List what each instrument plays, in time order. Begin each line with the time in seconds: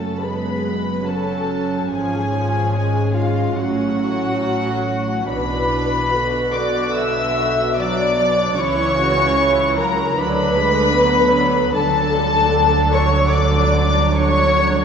Already playing: double bass section F#1, cello section F#2, viola section A3 C#4, violin section A4 A5
0.22 viola section G#3 B3, violin section B4 B5
0.65 viola section B3
1.06 viola section F#3 C#4, violin section A4 A5
1.90 double bass section G#1, cello section G#2, viola section F3 C#4, violin section G#4 G#5
2.33 viola section F3
2.75 viola section G#3
3.14 viola section G#3, violin section F4 F5
3.56 double bass section A1, cello section A2, viola section F#3 C#4, violin section F#4 F#5
3.98 viola section C#4
5.29 double bass section B1, cello section B2, viola section E3 D4, violin section B4 B5
6.13 viola section D3 F#4
6.54 violin section D5 D6
6.95 violin section E5 E6
7.77 viola section F#3 D4, violin section D5 D6
8.20 viola section F#3
8.58 double bass section C#2, cello section C#3, viola section E3 E4, violin section C#5 C#6
8.99 viola section F#4
9.40 viola section E3 E4
9.78 viola section F#3, violin section A#4 A#5
10.18 double bass section D2, cello section D3, viola section F#3 D4, violin section B4 B5
10.59 viola section G#3
10.98 viola section F#3 B3
11.75 double bass section D2, cello section D3, viola section F#3 D4, violin section A4 A5
12.93 violin section C#5 C#6
13.33 violin section D5 D6
14.13 violin section C#5 C#6